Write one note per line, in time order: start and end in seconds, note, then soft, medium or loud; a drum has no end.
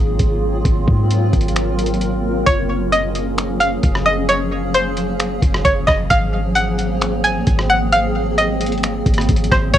0.00 0.19 G#1 loud
0.00 2.43 F#3 medium
0.00 2.43 A#3 medium
0.00 2.43 C4 medium
0.00 2.43 F4 medium
0.00 0.61 G#4 medium
0.19 0.63 G#1 loud
0.19 kick medium
0.19 closed hi-hat medium
0.65 0.87 G#1 loud
0.65 2.45 A#4 medium
0.65 kick loud
0.65 closed hi-hat medium
0.88 1.31 G#2 loud
0.88 kick loud
1.11 closed hi-hat medium
1.33 2.43 G#1 loud
1.33 kick medium
1.33 closed hi-hat soft
1.41 closed hi-hat medium
1.48 closed hi-hat medium
1.56 finger snap loud
1.56 closed hi-hat medium
1.79 closed hi-hat medium
1.86 closed hi-hat medium
1.94 closed hi-hat soft
2.01 closed hi-hat medium
2.46 3.79 F#1 loud
2.46 9.79 F3 medium
2.46 6.07 F#3 medium
2.46 9.79 A#3 medium
2.46 6.07 C#4 medium
2.46 6.07 G#4 medium
2.46 2.89 C#5 loud
2.46 kick loud
2.46 closed hi-hat medium
2.92 3.57 D#5 medium
2.92 closed hi-hat medium
3.15 closed hi-hat medium
3.38 finger snap loud
3.38 closed hi-hat medium
3.60 4.03 F5 medium
3.60 closed hi-hat medium
3.83 5.38 F#1 loud
3.83 kick loud
3.83 closed hi-hat medium
3.95 cross-stick loud
4.06 4.27 D#5 medium
4.29 4.71 C#5 loud
4.29 closed hi-hat medium
4.74 5.61 C5 loud
4.74 closed hi-hat medium
4.97 closed hi-hat medium
5.20 finger snap loud
5.20 closed hi-hat medium
5.42 5.64 F#1 loud
5.42 kick loud
5.42 closed hi-hat medium
5.54 cross-stick loud
5.65 5.87 F#1 loud
5.65 5.87 C#5 medium
5.65 kick loud
5.65 closed hi-hat medium
5.87 6.10 F#1 loud
5.87 6.09 D#5 medium
5.87 kick loud
5.87 cross-stick loud
6.10 7.43 G#1 loud
6.10 9.79 F#3 medium
6.10 9.70 C4 medium
6.10 9.79 G#4 medium
6.10 6.53 F5 loud
6.10 kick loud
6.10 closed hi-hat medium
6.55 7.20 F#5 medium
6.55 closed hi-hat medium
6.79 closed hi-hat medium
7.01 finger snap loud
7.01 closed hi-hat medium
7.24 7.67 G#5 loud
7.24 closed hi-hat medium
7.47 9.02 G#1 loud
7.47 kick loud
7.47 closed hi-hat medium
7.59 cross-stick loud
7.70 7.91 F#5 medium
7.92 8.35 F5 loud
7.92 closed hi-hat medium
8.38 9.47 D#5 medium
8.38 closed hi-hat medium
8.61 closed hi-hat medium
8.66 closed hi-hat medium
8.72 closed hi-hat soft
8.78 closed hi-hat soft
8.83 finger snap loud
8.83 closed hi-hat medium
9.06 9.28 G#1 loud
9.06 kick loud
9.06 closed hi-hat medium
9.14 closed hi-hat medium
9.18 cross-stick loud
9.18 closed hi-hat medium
9.29 9.51 G#1 loud
9.29 kick loud
9.29 closed hi-hat medium
9.36 closed hi-hat medium
9.44 closed hi-hat medium
9.51 9.73 G#1 loud
9.51 9.73 C5 medium
9.51 kick medium
9.51 cross-stick loud
9.74 9.79 F#1 loud
9.74 9.79 C#4 medium
9.74 9.79 C#5 loud
9.74 kick loud
9.74 closed hi-hat medium